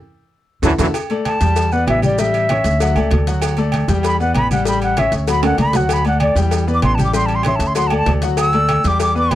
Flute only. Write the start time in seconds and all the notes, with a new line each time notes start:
1.26 A5
1.72 F#5
1.89 E5
2.05 D5
2.19 E5
4.05 B5
4.21 F#5
4.36 B5
4.52 F#5
4.68 B5
4.83 F#5
4.99 E5
5.30 B5
5.45 F#5
5.61 B5
5.77 F#5
5.93 B5
6.08 F#5
6.21 D5
6.74 D6
6.84 C6
6.95 A5
7.04 D6
7.15 C6
7.26 A5
7.35 C6
7.46 C6
7.56 A5
7.67 C6
7.77 C6
7.87 A5
7.97 A5
8.40 E6
8.88 D6
9.02 D6
9.18 D6